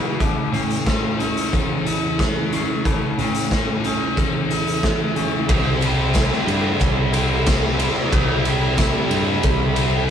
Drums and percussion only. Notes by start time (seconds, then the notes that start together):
0.20 kick, closed hi-hat
0.54 closed hi-hat
0.70 closed hi-hat
0.86 kick, snare, closed hi-hat
1.20 closed hi-hat
1.37 closed hi-hat
1.53 kick, closed hi-hat
1.86 closed hi-hat
2.19 kick, snare, closed hi-hat
2.53 closed hi-hat
2.85 kick, closed hi-hat
3.19 closed hi-hat
3.35 closed hi-hat
3.51 kick, snare, closed hi-hat
3.84 closed hi-hat
4.17 kick, closed hi-hat
4.51 closed hi-hat
4.67 closed hi-hat
4.83 kick, snare, closed hi-hat
5.16 closed hi-hat
5.49 kick, ride
5.81 ride, tambourine
6.14 kick, snare, ride, tambourine
6.32 snare
6.48 ride, tambourine
6.79 kick, ride, tambourine
7.13 ride, tambourine
7.46 kick, snare, ride, tambourine
7.79 ride, tambourine
8.13 kick, ride
8.45 ride, tambourine
8.78 kick, snare, ride, tambourine
9.11 ride, tambourine
9.43 kick, ride, tambourine
9.76 ride, tambourine